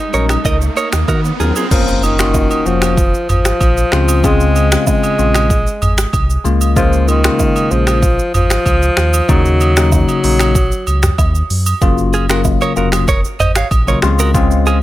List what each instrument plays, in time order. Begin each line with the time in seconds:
Already playing: alto saxophone D#4, riser
0.13 sub bass A#1, tine electric piano F#3 C#4 D#4 A#4, clean electric guitar A#4 C#5, shaker
0.29 finger snap, cross-stick, high agogo, shaker
0.45 sub bass C#2, clean electric guitar A#4 D#5, kick, shaker
0.62 shaker
0.77 clean electric guitar A#4 C#5, high agogo, shaker
0.93 sub bass D#2, finger snap, cross-stick, shaker
1.08 sub bass D#3, clean electric guitar F#4 A#4, kick, high agogo, low woodblock, shaker
1.25 shaker
1.40 sub bass D#2, tine electric piano F#3 C#4 D#4 A#4, clean electric guitar F4 G#4, shaker
1.56 clean electric guitar F4 G#4, high agogo, shaker
1.71 sub bass F#1, alto saxophone F3, tine electric piano A#3 C#4 F4 A#4, kick, crash, impact, shaker
1.88 shaker
2.03 alto saxophone D#3, high agogo, shaker
2.19 tine electric piano A#3 C#4 F4 F#4, finger snap, cross-stick, shaker
2.34 kick, low woodblock, shaker
2.51 high agogo, shaker
2.66 sub bass F1, tine electric piano F3 A#3 C#4 F#4, alto saxophone F3, shaker
2.82 finger snap, cross-stick, high agogo, shaker
2.97 kick, shaker
3.14 shaker
3.29 sub bass G#1, alto saxophone F3, mid tom, high agogo, shaker
3.45 finger snap, cross-stick, shaker
3.61 sub bass A#1, kick, high agogo, shaker
3.77 shaker
3.92 sub bass C#2, tine electric piano C#3 G#3 C4 F4, finger snap, cross-stick, shaker
4.09 high agogo, shaker
4.24 tine electric piano C#3 G#3 C4 F4, alto saxophone G#3, kick, shaker
4.40 shaker
4.56 high agogo, shaker
4.72 tine electric piano C#3 G#3 C4 F4, finger snap, cross-stick, shaker
4.87 alto saxophone G#3, kick, low woodblock, shaker
5.03 high agogo, shaker
5.18 sub bass A#1, tine electric piano C#3 G#3 C4 F4, shaker
5.34 finger snap, cross-stick, high agogo, shaker
5.50 kick, shaker
5.67 shaker
5.82 sub bass G#1, mid tom, high agogo, shaker
5.98 finger snap, cross-stick, shaker
6.13 sub bass C2, kick, high agogo, shaker
6.30 shaker
6.44 sub bass C#2, tine electric piano C#3 G#3 A#3 F4, shaker
6.61 high agogo, shaker
6.76 tine electric piano C#3 G#3 A#3 F4, alto saxophone F3, kick, shaker
6.93 shaker
7.08 alto saxophone D#3, high agogo, shaker
7.24 tine electric piano C#3 G#3 A#3 F4, finger snap, cross-stick, shaker
7.39 kick, low woodblock, shaker
7.56 high agogo, shaker
7.71 sub bass A#1, tine electric piano C#3 G#3 A#3 F4, alto saxophone F3, shaker
7.87 finger snap, cross-stick, high agogo, shaker
8.03 kick, shaker
8.19 shaker
8.34 sub bass G#1, alto saxophone F3, mid tom, high agogo, shaker
8.50 finger snap, cross-stick, shaker
8.66 sub bass C#2, kick, high agogo, shaker
8.82 shaker
8.97 sub bass D#2, finger snap, cross-stick, shaker
9.14 high agogo, shaker
9.29 sub bass D#2, tine electric piano C#3 F#3 A#3 D#4, alto saxophone F#3, kick, shaker
9.45 shaker
9.61 high agogo, shaker
9.77 tine electric piano C#3 F#3 A#3 D#4, finger snap, cross-stick, shaker
9.92 alto saxophone F#3, kick, low woodblock, shaker
10.09 high agogo, shaker
10.23 sub bass A#1, tine electric piano C#3 F#3 A#3 D#4, open hi-hat, shaker
10.39 finger snap, cross-stick, high agogo, shaker
10.55 kick, shaker
10.72 shaker
10.87 sub bass C#2, high agogo, shaker
11.03 finger snap, cross-stick, mid tom, shaker
11.18 sub bass D#2, kick, high agogo, low woodblock, shaker
11.35 shaker
11.50 sub bass F#2, open hi-hat, shaker
11.66 high agogo, shaker
11.82 sub bass F#1, tine electric piano C#3 F#3 A#3 F4, kick, shaker
11.98 shaker
12.13 clean electric guitar F4 G#4, high agogo, shaker
12.29 tine electric piano C#3 F#3 A#3 F4, clean electric guitar F#4 A#4, finger snap, cross-stick, shaker
12.44 kick, low woodblock, shaker
12.61 clean electric guitar A#4 C#5, high agogo, shaker
12.76 sub bass F1, tine electric piano C#3 F#3 A#3 F4, clean electric guitar F#4 A#4, shaker
12.92 finger snap, cross-stick, high agogo, shaker
13.08 clean electric guitar A#4 C#5, kick, shaker
13.25 shaker
13.40 sub bass G#1, clean electric guitar C5 D#5, mid tom, high agogo, shaker
13.55 clean electric guitar C#5 F5, finger snap, cross-stick, shaker
13.71 sub bass A#1, kick, high agogo, shaker
13.87 tine electric piano C#3 F#3 A#3 F4, clean electric guitar A#4 C#5, shaker
14.02 sub bass C#2, tine electric piano C#3 G#3 C4 F4, finger snap, cross-stick, shaker
14.19 clean electric guitar F#4 A#4, high agogo, shaker
14.34 tine electric piano C#3 G#3 C4 F4, kick, shaker
14.51 shaker
14.66 clean electric guitar F4 G#4, high agogo, shaker